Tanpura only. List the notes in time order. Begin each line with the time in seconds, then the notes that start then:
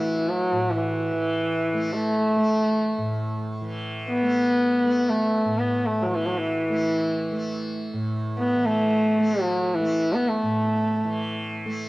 Already playing: A2 E3 A3
0.52 A2
1.12 E3
1.73 A3
2.37 A3
2.98 A2
3.61 E3
4.22 A3
4.84 A3
5.45 A2
6.06 E3
6.70 A3
7.32 A3
7.93 A2
8.55 E3
9.18 A3
9.80 A3
10.43 A2
11.04 E3
11.66 A3